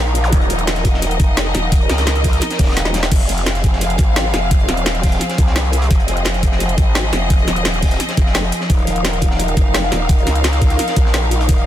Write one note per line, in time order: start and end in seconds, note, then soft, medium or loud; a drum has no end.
0.00 0.31 A#1 loud
0.00 3.08 F3 medium
0.00 3.08 D#4 medium
0.00 3.08 A#4 medium
0.00 0.29 F5 medium
0.07 closed hi-hat soft
0.15 closed hi-hat medium
0.24 closed hi-hat medium
0.24 zap medium
0.33 1.18 D#1 loud
0.33 3.09 D#5 medium
0.33 kick loud
0.33 closed hi-hat loud
0.33 closed hi-hat medium
0.41 closed hi-hat soft
0.50 closed hi-hat medium
0.59 closed hi-hat soft
0.67 snare loud
0.67 closed hi-hat loud
0.67 closed hi-hat medium
0.76 snare soft
0.76 closed hi-hat soft
0.85 kick medium
0.85 closed hi-hat medium
0.94 snare soft
1.02 closed hi-hat loud
1.02 closed hi-hat medium
1.11 closed hi-hat soft
1.20 1.53 F1 loud
1.20 kick loud
1.20 closed hi-hat medium
1.37 snare loud
1.37 closed hi-hat medium
1.37 closed hi-hat loud
1.54 1.88 D#1 medium
1.54 snare soft
1.54 closed hi-hat medium
1.72 kick loud
1.72 closed hi-hat loud
1.81 closed hi-hat soft
1.89 2.40 C#2 loud
1.89 snare loud
1.89 snare soft
1.89 closed hi-hat medium
1.98 snare loud
1.98 closed hi-hat medium
1.98 closed hi-hat soft
2.07 snare loud
2.07 closed hi-hat medium
2.16 snare soft
2.16 closed hi-hat soft
2.24 kick medium
2.24 closed hi-hat medium
2.24 open hi-hat medium
2.33 closed hi-hat soft
2.41 snare soft
2.41 closed hi-hat medium
2.41 closed hi-hat loud
2.51 snare medium
2.51 closed hi-hat soft
2.59 3.10 D#1 loud
2.59 kick loud
2.59 snare medium
2.59 closed hi-hat medium
2.63 snare loud
2.63 closed hi-hat medium
2.68 snare medium
2.68 closed hi-hat medium
2.72 snare medium
2.72 closed hi-hat medium
2.77 snare medium
2.77 closed hi-hat loud
2.85 snare medium
2.94 snare loud
2.94 closed hi-hat medium
3.03 snare medium
3.12 3.97 F1 medium
3.12 11.66 F3 medium
3.12 8.66 C4 medium
3.12 8.66 G#4 medium
3.12 5.88 F5 medium
3.12 kick loud
3.12 closed hi-hat medium
3.12 crash medium
3.20 closed hi-hat soft
3.29 closed hi-hat medium
3.38 closed hi-hat soft
3.46 snare loud
3.46 closed hi-hat medium
3.46 closed hi-hat loud
3.55 snare soft
3.55 closed hi-hat soft
3.64 kick medium
3.64 closed hi-hat medium
3.73 snare medium
3.81 closed hi-hat medium
3.81 closed hi-hat loud
3.90 closed hi-hat soft
3.98 4.32 G#1 loud
3.98 kick loud
3.98 closed hi-hat medium
4.16 snare loud
4.16 closed hi-hat loud
4.16 closed hi-hat medium
4.34 4.67 F1 medium
4.34 snare medium
4.34 closed hi-hat medium
4.51 kick loud
4.51 closed hi-hat medium
4.60 closed hi-hat soft
4.68 5.20 D#1 loud
4.68 snare medium
4.68 closed hi-hat medium
4.77 closed hi-hat soft
4.86 snare loud
4.86 closed hi-hat medium
4.95 snare soft
4.95 closed hi-hat soft
5.03 kick medium
5.03 closed hi-hat medium
5.03 open hi-hat medium
5.12 closed hi-hat soft
5.21 snare soft
5.21 closed hi-hat medium
5.29 snare medium
5.29 closed hi-hat soft
5.38 5.89 C2 loud
5.38 kick loud
5.38 closed hi-hat medium
5.47 snare medium
5.56 snare loud
5.56 closed hi-hat medium
5.56 closed hi-hat loud
5.65 closed hi-hat soft
5.72 closed hi-hat medium
5.82 closed hi-hat medium
5.91 6.76 F1 loud
5.91 8.67 D#5 medium
5.91 kick loud
5.91 closed hi-hat medium
6.00 closed hi-hat soft
6.08 closed hi-hat medium
6.17 closed hi-hat soft
6.25 snare loud
6.25 closed hi-hat medium
6.34 snare soft
6.34 closed hi-hat soft
6.43 kick medium
6.43 closed hi-hat medium
6.52 snare soft
6.60 closed hi-hat medium
6.69 closed hi-hat soft
6.78 7.11 G#1 loud
6.78 kick loud
6.78 closed hi-hat medium
6.95 snare loud
6.95 closed hi-hat medium
7.13 7.46 F1 medium
7.13 snare soft
7.13 closed hi-hat medium
7.30 kick loud
7.30 closed hi-hat medium
7.39 closed hi-hat soft
7.47 7.99 D#1 medium
7.47 snare soft
7.47 closed hi-hat medium
7.56 closed hi-hat soft
7.65 snare loud
7.65 closed hi-hat medium
7.74 snare soft
7.74 closed hi-hat soft
7.83 kick medium
7.83 closed hi-hat medium
7.83 open hi-hat medium
7.91 closed hi-hat soft
8.00 snare soft
8.00 closed hi-hat medium
8.09 snare medium
8.09 closed hi-hat soft
8.17 8.51 F1 loud
8.17 kick loud
8.17 closed hi-hat medium
8.26 snare soft
8.34 snare loud
8.34 closed hi-hat medium
8.44 closed hi-hat soft
8.52 closed hi-hat medium
8.60 snare soft
8.70 9.56 D#1 medium
8.70 11.66 D#4 medium
8.70 11.66 A#4 medium
8.70 11.66 F5 medium
8.70 kick loud
8.70 closed hi-hat medium
8.78 closed hi-hat soft
8.87 closed hi-hat medium
8.96 closed hi-hat soft
9.04 snare loud
9.04 closed hi-hat medium
9.13 snare soft
9.13 closed hi-hat soft
9.21 kick medium
9.21 closed hi-hat medium
9.31 snare soft
9.39 closed hi-hat medium
9.48 closed hi-hat soft
9.57 9.90 F1 loud
9.57 kick loud
9.57 closed hi-hat medium
9.74 snare loud
9.74 closed hi-hat medium
9.92 10.25 D#1 medium
9.92 snare soft
9.92 closed hi-hat medium
10.09 kick loud
10.09 closed hi-hat medium
10.18 closed hi-hat soft
10.27 10.78 C#2 loud
10.27 snare soft
10.27 closed hi-hat medium
10.35 closed hi-hat soft
10.44 snare loud
10.44 closed hi-hat medium
10.53 snare soft
10.53 closed hi-hat soft
10.61 kick medium
10.61 closed hi-hat medium
10.61 open hi-hat medium
10.70 closed hi-hat soft
10.79 snare soft
10.79 closed hi-hat medium
10.88 snare medium
10.88 closed hi-hat soft
10.96 11.47 A#1 loud
10.96 kick loud
10.96 closed hi-hat medium
11.06 snare soft
11.14 snare loud
11.14 closed hi-hat medium
11.14 closed hi-hat loud
11.22 closed hi-hat soft
11.31 closed hi-hat medium
11.41 closed hi-hat medium
11.49 11.66 D#1 medium
11.49 kick loud
11.49 closed hi-hat medium
11.58 closed hi-hat soft